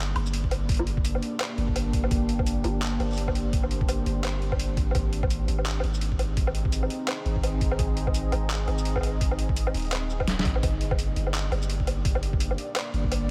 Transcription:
Already playing: G1 A#3 D4 G4 D5
0.16 G1, closed hi-hat, low woodblock
0.26 shaker
0.33 closed hi-hat
0.44 kick
0.51 closed hi-hat, low woodblock
0.69 kick, closed hi-hat
0.72 closed hi-hat
0.74 closed hi-hat
0.77 closed hi-hat, low woodblock
0.87 closed hi-hat
0.97 kick
1.05 closed hi-hat, shaker
1.15 low woodblock
1.23 closed hi-hat
1.40 clap, closed hi-hat, low woodblock
1.58 G1, closed hi-hat
1.68 kick
1.76 closed hi-hat, low woodblock
1.93 kick, closed hi-hat
2.04 low woodblock
2.11 G1, kick, closed hi-hat
2.26 C5, closed hi-hat
2.39 kick, low woodblock
2.46 closed hi-hat, shaker
2.64 G1, closed hi-hat, low woodblock
2.82 clap, closed hi-hat, shaker
3.00 G1, closed hi-hat, low woodblock
3.10 shaker
3.12 shaker
3.14 shaker
3.16 closed hi-hat, shaker
3.28 kick, low woodblock
3.35 closed hi-hat
3.53 kick, closed hi-hat
3.63 low woodblock
3.71 closed hi-hat
3.81 kick
3.89 closed hi-hat, low woodblock, shaker
4.06 G1, closed hi-hat
4.24 clap, closed hi-hat, low woodblock
4.42 closed hi-hat
4.52 kick, low woodblock
4.59 closed hi-hat
4.77 G#1, kick, closed hi-hat
4.91 C4, closed hi-hat, low woodblock
4.95 G#1, kick, low woodblock
5.07 D#4
5.13 closed hi-hat
5.23 G#4, kick, low woodblock
5.30 closed hi-hat, shaker
5.44 D#5
5.48 G#1, closed hi-hat
5.59 low woodblock
5.66 clap, closed hi-hat, shaker
5.80 G#1, closed hi-hat, low woodblock
5.94 shaker
6.01 closed hi-hat
6.12 kick
6.19 closed hi-hat, low woodblock
6.37 kick, closed hi-hat
6.47 low woodblock
6.55 closed hi-hat
6.65 kick
6.72 closed hi-hat, shaker
6.83 low woodblock
6.90 closed hi-hat
7.08 clap, closed hi-hat, low woodblock
7.26 G#1, closed hi-hat
7.36 kick
7.43 closed hi-hat, low woodblock
7.61 kick, closed hi-hat
7.72 low woodblock
7.79 G#1, kick, closed hi-hat
7.97 closed hi-hat
8.07 kick, low woodblock
8.14 closed hi-hat, shaker
8.32 G#1, closed hi-hat, low woodblock
8.50 clap, closed hi-hat, shaker
8.68 G#1, closed hi-hat, low woodblock
8.78 shaker
8.85 closed hi-hat
8.96 kick, low woodblock
8.97 low woodblock
9.01 closed hi-hat, low woodblock
9.03 low woodblock
9.07 low woodblock
9.09 low woodblock
9.21 kick, closed hi-hat
9.31 low woodblock
9.39 closed hi-hat
9.49 kick
9.56 closed hi-hat, shaker
9.67 low woodblock
9.74 D#1, closed hi-hat
9.77 closed hi-hat
9.80 closed hi-hat
9.82 closed hi-hat
9.85 closed hi-hat
9.87 closed hi-hat
9.88 closed hi-hat
9.90 clap, closed hi-hat
9.92 closed hi-hat, low woodblock
10.10 shaker
10.20 kick, low woodblock
10.28 snare, closed hi-hat
10.39 snare
10.45 G#1, kick, closed hi-hat
10.56 low woodblock
10.63 G1 A#3, kick, closed hi-hat, low woodblock
10.71 D4 D5
10.81 closed hi-hat
10.86 G4
10.91 kick, low woodblock
10.99 closed hi-hat, shaker
11.16 G1, closed hi-hat
11.27 low woodblock
11.34 clap, closed hi-hat, shaker
11.52 G1, closed hi-hat, low woodblock
11.62 shaker
11.70 closed hi-hat
11.80 kick
11.87 closed hi-hat, low woodblock
12.05 kick, closed hi-hat
12.15 low woodblock
12.23 closed hi-hat
12.33 kick
12.40 closed hi-hat, shaker
12.51 low woodblock
12.58 closed hi-hat
12.76 clap, closed hi-hat, low woodblock
12.94 G1, closed hi-hat
13.04 kick
13.12 closed hi-hat, low woodblock

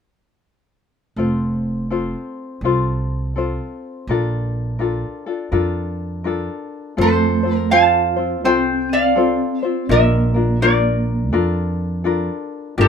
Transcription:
1.16 F1 C4 F4 A4 C5
1.90 C4 F4 A4 C5
2.61 C2 C4 F4 A4 C5
3.36 C4 F4 A4 C5
4.07 A#1 D4 F4 A4 A#4
4.79 D4 F4 A4 A#4
5.26 D4 F4 A4
5.52 F2 D4 F4 A4 A#4
6.24 D4 F4 A4 A#4
6.97 F2 A3 C4 F4 A4 C5
7.01 A4 C5
7.43 C4 F4 C5
7.56 A#4
7.70 C4 F4 A4 C5 F5 A5
8.16 C4 F4 C5
8.44 C2 C4 F4 A4 C5 G5
8.89 C4 D5 F5
9.16 C4 F4 A4 C5
9.60 F4 C5 E5
9.65 C4
9.89 A#1 A#3 D4 F4 A#4 E5
10.34 D4 F4 A#4
10.61 A#3 D4 F4 A#4 D5
11.33 F2 D4 F4 A4 A#4
12.04 D4 F4 A4 A#4
12.78 G1 G3 D4 F4 G4 A#4

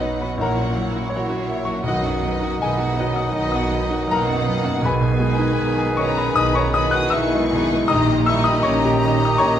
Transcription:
Already playing: B1 F#2 B2 F#3 B3 D#4 F#4 B4 F#5 B5
0.00 F#3 D#4 B4 D#5
0.20 B3 F#4 D#5 B5
0.37 A#1 E3 A#3 E4 A#4 C#5 F#5
0.41 A#2 E4 A#4 F#5 A#5
0.56 A#2 F#3 C#4 F#4 A#4
0.74 E3 F#3 E4 A#4 C#5
0.91 F#3 C#4 E4 F#4 A#4
1.10 A#1 E3 F#3 E4 A#4 C#5
1.14 A#2 F#4 C#5 F#5
1.28 F#3 C#4 F#4 A#4
1.46 E3 E4 A#4 C#5 E5
1.65 F#3 C#4 F#4 A#4 C#6
1.83 B1 D#3 F#3 D#4 B4 D#5
1.87 B1 B2 F#4 D#5 F#5
2.02 F#2 F#3 B3 F#4 F#5
2.21 D#3 F#3 D#4 B4 D#5
2.39 F#3 B3 D#4 F#4 F#5
2.58 B1 B2 D#3 G#3 D#4 B4 D#5 E5 G#5
2.64 G#4
2.77 F#3 B3 F#4 F#5
2.94 D#3 F#3 D#4 D#5
2.99 F#4 B4 D#5 F#5
3.16 F#3 B3 F#4 F#5 D#6
3.32 B1 B2 D#3 D#4 B4 D#5
3.52 F#3 B3 F#4 F#5 D#6
3.69 D#3 D#4 D#5
3.73 B4 D#5
3.89 F#3 B3 D#4 F#4 F#5
4.08 B1 B2 D#3 F#3 A#3 D#4 B4 D#5 F#5 A#5
4.13 A#4 F#5
4.25 F#2 F#3 B3 F#4 F#5
4.44 D#3 F#3 D#4 B4 D#5
4.63 F#2 F#3 B3 F#4 F#5
4.81 B1 B3 G#4 B4 G#5
4.85 B2 B4 G#5 B5
5.01 B2
5.19 D#3 G#3 D#4 G#4 B4
5.38 D#4
5.58 B1 B2 B4
5.78 G#4
5.96 D#3 C#4 D#4 G#4 B4 C#5 D#5 A#5 C#6
6.18 B5
6.35 B1 B2 D#4 D#5 B5 D#6
6.53 C#4 C#5 A#5 B5 C#6
6.71 D#3 D#4 G#4 B4 D#5 D#6
6.75 D#4 B5
6.91 F#4 B4 F#5 D#6 F#6
7.10 B1 B2 D#4 E5 C#6 E6
7.16 E4
7.35 G#3
7.47 D#3 D#4 G#4 B4
7.52 B2
7.73 G#3
7.86 A#1 A#2 D#3 D#4 G4 D#5 A#5 D#6
7.91 A#1 A#5
8.11 A#2
8.26 D#3 D#4 E4 G4 D#5 E5 C#6 E6
8.30 G3
8.44 D#4 D#5 B5 D#6
8.52 D#4
8.63 A#1 A#2 C#4 C#5 A#5 C#6
8.67 D#5
8.85 G4
9.01 D#3 D#4 G4 D#5
9.05 D#5
9.25 D#6
9.38 A#1 A#2 C#4 C#5 A#5 C#6
9.45 D#5

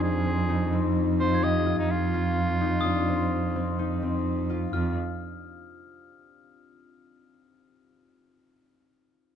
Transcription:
Already playing: F2 C4 D4 F4 G4
0.03 G#4
0.26 C4
0.49 D#4
0.72 C4
1.20 F4 C5
1.34 G#6
1.43 G4 D#5
1.66 F4
1.79 D#4
1.91 F4
2.14 F4
2.61 D#4
2.81 D#6
2.85 D4
3.08 C4
3.56 C4
3.79 D#4
4.02 C4
4.50 F4
4.73 F2 F4 F6

